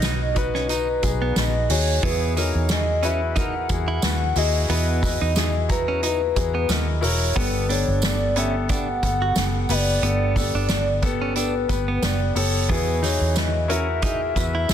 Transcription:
Already playing: B1 D#4 F#4 G#4 A#4 B4 C#5 D#5
0.02 D#4 F#4 B4, snare, hi-hat pedal, open hi-hat, tambourine
0.35 D#4 F#4 B4, kick, hi-hat pedal, open hi-hat, tambourine
0.54 C#4, snare
0.69 D#4 F#4 B4 A#5, hi-hat pedal, open hi-hat, tambourine
1.02 B1 D#4 F#4 G#4, kick, hi-hat pedal, open hi-hat, tambourine
1.22 B3
1.35 A#1 D#4 F#4 B4 D#5, snare, hi-hat pedal, open hi-hat, tambourine
1.69 D#2 D#4 F#4 G#4 C#5, hi-hat pedal, open hi-hat, tambourine
2.03 E2 B2 B3 E4 F#4 G#4 B4, kick, hi-hat pedal, open hi-hat
2.36 E3 D#4 F#4 A#4 C#5, hi-hat pedal, open hi-hat, tambourine
2.55 E2
2.69 E4 F#4 G#4 D#5, snare, hi-hat pedal, open hi-hat, tambourine
3.03 C#4 E4 F#4 B4 E5, hi-hat pedal, open hi-hat, tambourine
3.36 D#4 E4 F#4 A#4 F#5, kick, hi-hat pedal, open hi-hat, tambourine
3.69 E2 E4 F#4 G#4, kick, hi-hat pedal, open hi-hat, tambourine
3.88 E4
4.02 D#2 E4 F#4 B4, snare, hi-hat pedal, open hi-hat, tambourine
4.36 D#2 E4 F#4 G#4 D#5, hi-hat pedal, open hi-hat, tambourine
4.69 E2 B2 B3 E4 F#4 B4, hi-hat pedal, open hi-hat, tambourine
5.02 E4 F#4 B4 D#5, kick, hi-hat pedal, open hi-hat, tambourine
5.21 E2 D#4
5.36 D#4 E4 F#4 G#4, snare, hi-hat pedal, open hi-hat, tambourine
5.69 E4 F#4 B4 A#5, kick, hi-hat pedal, open hi-hat, tambourine
5.88 C#4
6.02 D#4 E4 F#4 B4 A#5, hi-hat pedal, open hi-hat, tambourine
6.35 E2 E4 F#4 G#4, kick, hi-hat pedal, open hi-hat, tambourine
6.55 B3
6.68 D#2 E4 F#4 A#4 D#5, snare, hi-hat pedal, open hi-hat, tambourine
7.01 E1 E4 F#4 A#4 C#5, hi-hat pedal, open hi-hat, tambourine
7.35 G1 G2 D3 B3 G4 A4 B4, kick, hi-hat pedal, open hi-hat, tambourine
7.69 B3 D4 G4 A4 C#5, hi-hat pedal, open hi-hat, tambourine
7.88 G1
8.02 B3 G4 A4 D5, snare, hi-hat pedal, open hi-hat, tambourine
8.36 B3 C#4 G4 A4 E5, hi-hat pedal, open hi-hat
8.69 B3 D4 G4 A4 F#5, kick, hi-hat pedal, open hi-hat, tambourine
9.03 G1 B3 G4 A4, kick, hi-hat pedal, open hi-hat, tambourine
9.22 F#4
9.36 F#1 B3 G4 A4, snare, hi-hat pedal, open hi-hat, tambourine
9.69 F#1 B3 G4 B4 D5, hi-hat pedal, open hi-hat, tambourine
10.02 G1 G2 D3 B3 G4 A4, hi-hat pedal, open hi-hat, tambourine
10.36 B3 G4 A4 D5, kick, hi-hat pedal, open hi-hat, tambourine
10.54 G1 D4
10.68 B3 D4 G4 A4, snare, hi-hat pedal, open hi-hat, tambourine
11.02 B3 G4 A4 B4, kick, hi-hat pedal, open hi-hat, tambourine
11.22 C#4
11.35 B3 D4 G4 A4 B4, hi-hat pedal, open hi-hat, tambourine
11.69 G1 B3 G4 B4, kick, hi-hat pedal, open hi-hat, tambourine
11.88 B3
12.02 F#1 B3 G4 B4 D5, snare, hi-hat pedal, open hi-hat, tambourine
12.35 F#1 B3 G4 A4 C#5, hi-hat pedal, open hi-hat, tambourine
12.69 E2 B2 B3 E4 F#4 G#4 B4, kick, hi-hat pedal, open hi-hat
13.02 E3 D#4 F#4 G#4 C#5, hi-hat pedal, open hi-hat, tambourine
13.21 E2
13.35 E4 F#4 B4 D#5, snare, hi-hat pedal, open hi-hat, tambourine
13.68 C#4 E4 F#4 A#4 E5, hi-hat pedal, open hi-hat
14.02 D#4 E4 F#4 G#4, kick, hi-hat pedal, open hi-hat, tambourine
14.35 E2 E4 F#4 B4, kick, hi-hat pedal, open hi-hat, tambourine
14.55 E4
14.69 D#2 E4 F#4 G#4, snare, hi-hat pedal, open hi-hat, tambourine

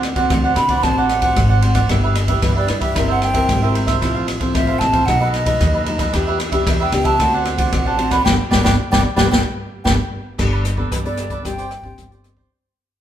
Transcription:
Already playing: D2 D3 A3 C4 F#4
0.03 muted cavaquinho stroke, cross-stick, ride
0.15 A3 C4 F#4 C5 D5 F#5, kick, ride
0.30 D2 A2 D4 C5 D5 F#5, kick, cross-stick, ride
0.44 C5 D5 F#5
0.56 D3 A3 C4 F#4 B5, muted cavaquinho stroke, cross-stick, ride
0.69 C5 D5 F#5, kick, ride
0.83 A1 D3 A3 C4 D4 F#4 C5 D5 F#5 A5, kick, cross-stick, ride
0.97 C5 D5 F#5
1.09 F#5, cross-stick, ride
1.21 A3 C4 F#4 C5 D5 F#5, kick, ride
1.36 G#1, kick, cross-stick, ride
1.49 C5 D5 F#5
1.61 A3 C4 D4 F#4 C5 D5 F#5, ride
1.74 C5 D5 F#5, kick, cross-stick, ride
1.89 G1 G3 D4 E4 G4 B4 E5, kick, cross-stick, ride
2.03 G4 B4 E5
2.15 muted cavaquinho stroke, cross-stick, ride
2.28 D4 E4 G4 B4 E5, kick, ride
2.42 G1 D3 D4 G4 B4 E5, kick, cross-stick, ride
2.56 G4 B4 D5 E5
2.68 G2 D4 E4 B4, muted cavaquinho stroke, cross-stick, ride
2.80 G4 B4 E5, kick, ride
2.95 G1 G3 C4 E4 A#4 C5 E5, kick, cross-stick, ride
3.08 A#4 C5 E5 F#5
3.22 G5, cross-stick, ride
3.33 C4 E4 A#4 C5 E5, kick, ride
3.49 G#1 G3, kick, cross-stick, ride
3.62 C4 E4 A#4 C5 E5
3.74 E4 A#4 C5 E5, ride
3.87 A#4 C5 E5, kick, cross-stick, ride
4.01 A1 A2 F3 C4 E4 A4 C5 F5, kick, cross-stick, ride
4.15 A4 C5 F5
4.27 muted cavaquinho stroke, cross-stick, ride
4.40 F3 C4 E4 A4 C5 F5, kick, ride
4.54 A1 A2 E4 A4 C5 E5 F5, kick, cross-stick, ride
4.67 A4 C5 F5
4.79 A1 F3 C4 E4 A5, muted cavaquinho stroke, cross-stick, ride
4.93 A4 C5 F5, kick, ride
5.06 B1 B2 F#3 A3 D#4 A4 B4 D#5 F#5, kick, cross-stick, ride
5.21 A4 B4 D#5
5.32 D#5, cross-stick, ride
5.46 F#3 A3 D#4 A4 B4 D#5, kick, ride
5.61 D#2 F#2, kick, cross-stick, ride
5.74 A4 B4 D#5
5.86 F#3 A3 D#4 A4 B4 D#5, ride
5.99 A4 B4 D#5, kick, cross-stick, ride
6.13 E2 E3 B3 D4 G4 B4 E5, kick, cross-stick, ride
6.27 G4 B4 E5
6.39 muted cavaquinho stroke, cross-stick, ride
6.52 B3 D4 G4 B4 E5, kick, ride
6.66 E2 B2 D4 G4 B4 E5, kick, cross-stick, ride
6.80 G4 B4 E5 G5
6.92 C#2 B3 D4 G4, muted cavaquinho stroke, cross-stick, ride
7.04 G4 B4 E5 A5, kick, ride
7.18 D2 D3 A3 C4 D4 F#4 C5 D5 F#5, kick, cross-stick, ride
7.34 C5 D5 F#5
7.45 cross-stick, ride
7.58 A3 C4 F#4 C5 D5 F#5, kick, ride
7.72 A1 A2 F#5, kick, cross-stick, ride
7.86 C5 D5 F#5 A5
7.97 A3 C4 D4 F#4 C5 D5 F#5, ride
8.11 C5 D5 F#5 B5, kick, cross-stick, ride
8.25 G1 G3 B3 D4 G4 B4 D5 G5, kick, snare
8.51 G1 G3 B3 D4 G4 B4 D5 G5, kick, snare
8.63 G1 G3 B3 D4 G4 B4 D5 G5, kick, snare
8.91 G1 G3 B3 D4 G4 B4 D5 G5, kick, snare
9.16 G1 G3 B3 D4 G4 B4 D5 G5, kick, snare
9.31 G1 G3 B3 D4 G4 B4 D5 G5, kick, snare
9.84 G1 G3 B3 D4 G4 B4 D5 G5, kick, snare
10.38 G1 G3 B3 D4 G4 A4 B4 D5, kick, cross-stick, crash
10.52 A4 B4 D5
10.64 muted cavaquinho stroke, cross-stick, closed hi-hat
10.76 B3 D4 A4 B4 D5, kick
10.91 G1 D3 G4 A4 B4 D5, kick, cross-stick, closed hi-hat
11.05 B3 D4 A4 B4 D5, closed hi-hat
11.17 G4 A4 B4 D5, cross-stick, closed hi-hat
11.30 A4 B4 D5, kick, closed hi-hat
11.44 G1 G3 C4 D4 G4 C5 D5 G5, kick, cross-stick, closed hi-hat
11.58 G4 C5 D5, closed hi-hat
11.71 muted cavaquinho stroke, cross-stick, closed hi-hat
11.82 G1 C4 D4 G4 C5 D5, kick
11.98 G1 G3, kick, cross-stick, closed hi-hat
12.11 C4 D4 G4 C5 D5, closed hi-hat
12.24 cross-stick, closed hi-hat
12.37 G4 C5 D5, kick

